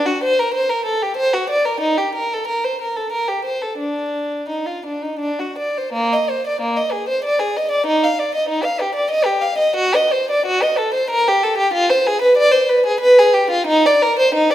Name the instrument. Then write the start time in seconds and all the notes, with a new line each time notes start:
violin
0.06 F#4
0.24 C5
0.39 A#4
0.54 C5
0.69 A#4
0.85 A4
1.02 G4
1.17 C5
1.34 F#4
1.50 D5
1.65 A#4
1.80 D#4
1.98 G4
2.15 A#4
2.33 A4
2.47 A#4
2.64 C5
2.81 A#4
2.96 A4
3.12 A#4
3.28 G4
3.45 C5
3.62 A4
3.78 D4
4.49 D#4
4.66 F4
4.86 D4
5.02 D#4
5.19 D4
5.40 F#4
5.58 D5
5.78 C5
5.93 A#3
6.13 D#5
6.30 C5
6.47 D5
6.61 A#3
6.76 D#5
6.92 G#4
7.09 C5
7.24 D5
7.39 G#4
7.57 D#5
7.71 D5
7.86 D#4
8.03 F5
8.19 D5
8.35 D#5
8.49 D#4
8.64 F5
8.81 G4
8.95 D5
9.11 D#5
9.25 G4
9.42 F5
9.58 D#5
9.76 F#4
9.95 D#5
10.12 C5
10.31 D5
10.46 F#4
10.63 D#5
10.78 A4
10.94 C5
11.10 A#4
11.28 G4
11.43 A4
11.58 G4
11.74 F4
11.90 C5
12.07 G#4
12.22 B4
12.37 D5
12.52 C5
12.69 B4
12.86 G#4
13.00 B4
13.18 G#4
13.34 G4
13.51 F4
13.67 D#4
13.86 D5
14.02 A#4
14.19 C5
14.35 D#4
14.51 D5